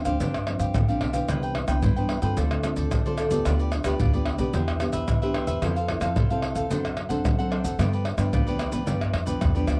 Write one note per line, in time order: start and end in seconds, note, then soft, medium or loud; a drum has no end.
0.00 0.18 D3 medium
0.05 0.18 D2 medium
0.05 0.16 F3 medium
0.05 0.16 C4 medium
0.05 0.16 D4 medium
0.05 0.19 G4 medium
0.05 0.19 C5 medium
0.05 0.19 F5 medium
0.05 pandeiro medium
0.05 maracas medium
0.05 surdo soft
0.20 0.55 G2 medium
0.20 0.72 G2 medium
0.20 0.37 F3 medium
0.20 0.37 C4 medium
0.20 0.45 D4 medium
0.20 0.37 D4 medium
0.20 0.46 G4 soft
0.20 0.46 C5 soft
0.20 0.46 F5 soft
0.20 pandeiro medium
0.20 maracas medium
0.20 surdo medium
0.34 pandeiro soft
0.34 tamborim medium
0.34 maracas soft
0.34 surdo soft
0.46 0.84 F3 medium
0.46 0.84 C4 medium
0.46 0.84 D4 medium
0.46 muted cavaquinho stroke soft
0.46 pandeiro medium
0.46 tamborim medium
0.59 0.72 G2 medium
0.59 0.87 G4 medium
0.59 0.87 C5 medium
0.59 0.86 F5 medium
0.59 pandeiro medium
0.59 maracas medium
0.59 surdo soft
0.74 0.99 A1 medium
0.74 1.26 D3 medium
0.74 pandeiro medium
0.74 tamborim medium
0.74 maracas medium
0.74 surdo loud
0.88 1.11 F3 medium
0.88 1.12 C4 medium
0.88 1.12 D4 medium
0.88 1.00 G4 medium
0.88 1.01 C5 medium
0.88 1.01 F5 medium
0.88 pandeiro soft
0.88 maracas soft
1.01 1.26 B1 medium
1.01 1.14 D4 soft
1.01 1.13 G4 soft
1.01 1.13 C5 soft
1.01 1.12 F5 soft
1.01 pandeiro medium
1.01 tamborim medium
1.13 1.64 E3 medium
1.13 1.65 B3 medium
1.13 1.65 D4 medium
1.13 1.27 G4 medium
1.13 1.27 C5 medium
1.13 1.27 F5 medium
1.13 pandeiro medium
1.13 maracas medium
1.13 surdo soft
1.28 1.63 C2 medium
1.28 1.81 C3 medium
1.28 1.41 E4 soft
1.28 1.42 B4 medium
1.28 1.41 C5 medium
1.28 1.42 G5 medium
1.28 pandeiro medium
1.28 tamborim medium
1.28 maracas medium
1.28 surdo medium
1.43 1.54 B4 medium
1.43 1.54 C5 medium
1.43 1.54 G5 medium
1.43 pandeiro soft
1.43 maracas soft
1.55 muted cavaquinho stroke soft
1.55 pandeiro medium
1.55 tamborim medium
1.55 surdo soft
1.68 1.80 C2 medium
1.68 1.92 E3 medium
1.68 1.92 B3 medium
1.68 1.92 D4 medium
1.68 1.82 B4 medium
1.68 1.82 C5 medium
1.68 1.81 G5 medium
1.68 pandeiro medium
1.68 tamborim medium
1.68 maracas medium
1.82 2.18 G2 medium
1.82 2.35 G2 medium
1.82 1.95 E4 medium
1.82 1.96 B4 medium
1.82 1.96 C5 medium
1.82 1.95 G5 medium
1.82 pandeiro medium
1.82 maracas medium
1.82 surdo loud
1.96 2.20 E3 medium
1.96 2.20 B3 medium
1.96 2.20 D4 medium
1.96 2.22 B4 medium
1.96 2.23 C5 medium
1.96 2.21 G5 medium
1.96 pandeiro soft
1.96 maracas soft
2.09 pandeiro medium
2.09 tamborim medium
2.22 2.35 G2 medium
2.22 2.60 C4 medium
2.22 2.60 F4 medium
2.22 2.60 A4 medium
2.22 2.36 B4 medium
2.22 2.36 C5 medium
2.22 2.36 G5 medium
2.22 pandeiro medium
2.22 maracas medium
2.22 surdo soft
2.37 2.72 D2 medium
2.37 2.89 D3 medium
2.37 2.62 F4 soft
2.37 2.63 A4 soft
2.37 2.63 C5 medium
2.37 2.63 D5 medium
2.37 pandeiro medium
2.37 maracas medium
2.37 surdo medium
2.51 pandeiro soft
2.51 tamborim medium
2.51 maracas soft
2.51 surdo soft
2.63 2.90 C4 medium
2.63 2.90 F4 medium
2.63 2.90 A4 medium
2.63 muted cavaquinho stroke soft
2.63 pandeiro medium
2.63 tamborim medium
2.63 maracas medium
2.76 2.89 D2 medium
2.76 3.04 A4 medium
2.76 3.04 C5 medium
2.76 3.03 D5 medium
2.76 pandeiro medium
2.76 maracas medium
2.76 surdo soft
2.91 3.43 A2 medium
2.91 3.26 D3 medium
2.91 pandeiro medium
2.91 tamborim medium
2.91 maracas medium
2.91 surdo loud
3.06 3.28 C4 medium
3.06 3.29 F4 medium
3.06 3.29 A4 medium
3.06 3.17 A4 medium
3.06 3.18 C5 medium
3.06 3.18 D5 medium
3.06 pandeiro soft
3.06 maracas soft
3.18 3.31 F4 soft
3.18 3.31 A4 soft
3.18 3.30 C5 medium
3.18 3.29 D5 medium
3.18 pandeiro medium
3.18 tamborim medium
3.18 maracas medium
3.31 3.43 D2 medium
3.31 3.81 B3 medium
3.31 3.82 F4 medium
3.31 3.82 G4 medium
3.31 3.45 A4 medium
3.31 3.44 C5 medium
3.31 3.44 D5 medium
3.31 pandeiro medium
3.31 maracas medium
3.31 surdo soft
3.45 3.80 D2 medium
3.45 3.97 D3 medium
3.45 3.58 F4 medium
3.45 3.59 G4 medium
3.45 3.59 B4 medium
3.45 3.59 D5 medium
3.45 pandeiro medium
3.45 tamborim medium
3.45 maracas medium
3.45 surdo medium
3.59 3.72 G4 medium
3.59 3.72 B4 medium
3.59 3.72 D5 medium
3.59 pandeiro soft
3.59 maracas soft
3.72 muted cavaquinho stroke soft
3.72 pandeiro medium
3.72 tamborim medium
3.72 maracas medium
3.72 surdo soft
3.84 3.97 D2 medium
3.84 4.08 B3 medium
3.84 4.09 F4 medium
3.84 4.09 G4 medium
3.84 3.99 G4 medium
3.84 3.98 B4 medium
3.84 3.98 D5 medium
3.84 pandeiro medium
3.84 tamborim medium
3.84 maracas medium
4.00 4.34 D2 medium
4.00 4.51 D3 medium
4.00 4.12 F4 medium
4.00 4.13 G4 medium
4.00 4.13 B4 medium
4.00 4.12 D5 medium
4.00 pandeiro medium
4.00 maracas medium
4.00 surdo loud
4.13 4.36 B3 medium
4.13 4.37 F4 medium
4.13 4.37 G4 medium
4.13 4.39 G4 medium
4.13 4.38 B4 medium
4.13 4.37 D5 medium
4.13 pandeiro soft
4.13 maracas soft
4.26 pandeiro medium
4.26 tamborim medium
4.38 4.51 B1 medium
4.38 4.76 B3 medium
4.38 4.77 D4 medium
4.38 4.52 G4 medium
4.38 4.77 G4 medium
4.38 4.52 B4 medium
4.38 4.52 D5 medium
4.38 pandeiro medium
4.38 maracas medium
4.38 surdo soft
4.53 4.89 E2 loud
4.53 5.06 E3 medium
4.53 4.79 G4 medium
4.53 4.80 B4 soft
4.53 4.79 C5 soft
4.53 4.80 E5 medium
4.53 pandeiro medium
4.53 maracas medium
4.53 surdo medium
4.68 pandeiro soft
4.68 tamborim medium
4.68 maracas soft
4.68 surdo soft
4.80 5.06 B3 medium
4.80 5.07 D4 medium
4.80 5.07 G4 medium
4.80 muted cavaquinho stroke soft
4.80 pandeiro medium
4.80 tamborim medium
4.80 maracas medium
4.92 5.05 E2 medium
4.92 5.20 B4 medium
4.92 5.20 C5 medium
4.92 5.20 E5 medium
4.92 pandeiro medium
4.92 maracas medium
4.92 surdo soft
5.08 5.43 E3 medium
5.08 5.60 E3 medium
5.08 pandeiro medium
5.08 tamborim medium
5.08 maracas medium
5.08 surdo medium
5.22 5.59 B3 medium
5.22 5.59 D4 medium
5.22 5.59 G4 medium
5.22 5.34 B4 medium
5.22 5.34 C5 medium
5.22 5.34 E5 medium
5.22 pandeiro soft
5.22 maracas soft
5.34 5.47 G4 soft
5.34 5.47 B4 soft
5.34 5.47 C5 soft
5.34 5.46 E5 medium
5.34 pandeiro medium
5.34 tamborim medium
5.47 5.59 E2 medium
5.47 5.61 B4 medium
5.47 5.61 C5 medium
5.47 5.61 E5 medium
5.47 pandeiro medium
5.47 maracas medium
5.47 surdo soft
5.62 5.97 F2 medium
5.62 6.14 F3 medium
5.62 5.79 C4 medium
5.62 5.75 E4 medium
5.62 5.79 E4 medium
5.62 5.75 A4 medium
5.62 5.79 A4 medium
5.62 5.76 C5 medium
5.62 5.75 F5 medium
5.62 pandeiro medium
5.62 tamborim medium
5.62 maracas medium
5.62 surdo medium
5.76 5.88 A4 medium
5.76 5.88 C5 medium
5.76 5.89 F5 medium
5.76 pandeiro soft
5.76 maracas soft
5.88 6.15 C4 medium
5.88 6.15 E4 medium
5.88 6.15 A4 medium
5.88 muted cavaquinho stroke soft
5.88 pandeiro medium
5.88 tamborim medium
5.88 surdo soft
6.01 6.14 F2 medium
6.01 6.16 A4 medium
6.01 6.15 C5 medium
6.01 6.15 F5 medium
6.01 pandeiro medium
6.01 tamborim medium
6.01 maracas medium
6.16 6.51 C2 medium
6.16 6.68 C3 medium
6.16 6.29 E4 medium
6.16 6.29 A4 medium
6.16 6.30 C5 medium
6.16 6.29 F5 medium
6.16 pandeiro medium
6.16 maracas medium
6.16 surdo loud
6.30 6.67 C4 medium
6.30 6.67 E4 medium
6.30 6.67 A4 medium
6.30 6.55 A4 medium
6.30 6.55 C5 medium
6.30 6.54 F5 medium
6.30 pandeiro soft
6.30 maracas soft
6.42 pandeiro medium
6.42 tamborim medium
6.55 6.68 E2 medium
6.55 6.69 A4 medium
6.55 6.69 C5 medium
6.55 6.69 F5 medium
6.55 pandeiro medium
6.55 maracas medium
6.55 surdo soft
6.70 7.05 F#2 loud
6.70 7.22 F#3 medium
6.70 6.96 C4 medium
6.70 6.95 D4 soft
6.70 6.96 D4 medium
6.70 6.96 A4 soft
6.70 6.97 A4 medium
6.70 6.96 C5 medium
6.70 6.96 F#5 medium
6.70 pandeiro medium
6.70 maracas medium
6.70 surdo medium
6.85 pandeiro soft
6.85 tamborim medium
6.85 maracas soft
6.85 surdo soft
6.96 muted cavaquinho stroke soft
6.96 pandeiro medium
6.96 tamborim medium
7.09 7.22 F#2 medium
7.09 7.33 C4 medium
7.09 7.34 D4 medium
7.09 7.37 A4 medium
7.09 7.34 A4 medium
7.09 7.37 C5 medium
7.09 7.36 F#5 medium
7.09 pandeiro medium
7.09 maracas medium
7.09 surdo soft
7.25 7.59 F#3 loud
7.25 7.76 F#3 medium
7.25 pandeiro medium
7.25 tamborim medium
7.25 maracas medium
7.25 surdo loud
7.39 7.75 C4 medium
7.39 7.75 D4 medium
7.39 7.75 A4 medium
7.39 7.50 A4 medium
7.39 7.51 C5 medium
7.39 7.51 F#5 medium
7.39 pandeiro soft
7.39 maracas soft
7.51 7.64 D4 soft
7.51 7.64 A4 soft
7.51 7.64 C5 medium
7.51 7.63 F#5 medium
7.51 pandeiro medium
7.51 tamborim medium
7.64 7.76 F#2 medium
7.64 7.78 A4 medium
7.64 7.78 C5 medium
7.64 7.77 F#5 medium
7.64 pandeiro medium
7.64 maracas medium
7.64 surdo soft
7.79 8.13 G2 medium
7.79 8.31 G2 medium
7.79 8.05 F3 medium
7.79 8.05 B3 medium
7.79 8.05 D4 medium
7.79 7.91 F4 soft
7.79 7.92 G4 medium
7.79 7.92 B4 medium
7.79 7.91 D5 medium
7.79 pandeiro medium
7.79 tamborim medium
7.79 maracas medium
7.79 surdo medium
7.93 8.05 G4 soft
7.93 8.05 B4 medium
7.93 8.05 D5 medium
7.93 pandeiro soft
7.93 maracas soft
8.05 muted cavaquinho stroke soft
8.05 pandeiro medium
8.05 tamborim medium
8.18 8.30 G2 medium
8.18 8.42 F3 medium
8.18 8.42 B3 medium
8.18 8.42 D4 medium
8.18 8.32 G4 medium
8.18 8.31 B4 medium
8.18 8.31 D5 medium
8.18 pandeiro medium
8.18 tamborim medium
8.18 maracas medium
8.33 8.68 D2 medium
8.33 8.85 D3 medium
8.33 8.45 F4 medium
8.33 8.46 G4 medium
8.33 8.46 B4 medium
8.33 8.45 D5 medium
8.33 pandeiro medium
8.33 maracas medium
8.33 surdo loud
8.47 8.70 F3 medium
8.47 8.70 B3 medium
8.47 8.70 D4 medium
8.47 8.72 G4 medium
8.47 8.71 B4 medium
8.47 8.71 D5 medium
8.47 pandeiro soft
8.47 maracas soft
8.59 pandeiro medium
8.59 tamborim medium
8.59 maracas medium
8.72 8.85 D2 medium
8.72 8.82 F3 medium
8.72 8.83 B3 medium
8.72 8.83 D4 medium
8.72 8.86 G4 medium
8.72 8.86 B4 medium
8.72 8.85 D5 medium
8.72 pandeiro medium
8.72 maracas medium
8.72 surdo soft
8.86 9.10 G2 loud
8.86 9.39 G2 medium
8.86 9.13 F3 medium
8.86 9.13 B3 medium
8.86 9.13 D4 medium
8.86 9.12 F4 soft
8.86 9.12 G4 medium
8.86 9.12 B4 medium
8.86 9.13 D5 medium
8.86 pandeiro medium
8.86 maracas medium
8.86 surdo medium
9.01 pandeiro soft
9.01 tamborim medium
9.01 maracas soft
9.01 surdo soft
9.13 9.38 F2 medium
9.13 muted cavaquinho stroke soft
9.13 pandeiro medium
9.13 tamborim medium
9.26 9.50 F3 medium
9.26 9.50 B3 medium
9.26 9.50 D4 medium
9.26 9.54 G4 medium
9.26 9.53 B4 medium
9.26 9.53 D5 medium
9.26 pandeiro medium
9.26 maracas medium
9.26 surdo soft
9.41 9.66 E2 medium
9.41 9.80 D3 medium
9.41 pandeiro medium
9.41 tamborim medium
9.41 maracas medium
9.41 surdo loud
9.55 9.78 F3 medium
9.55 9.78 B3 medium
9.55 9.79 D4 medium
9.55 9.66 G4 medium
9.55 9.67 B4 medium
9.55 9.67 D5 medium
9.55 pandeiro soft
9.55 maracas soft
9.67 9.80 D2 medium
9.67 9.80 F4 soft
9.67 9.80 G4 medium
9.67 9.79 B4 medium
9.67 9.79 D5 medium
9.67 pandeiro medium
9.67 tamborim medium
9.67 maracas medium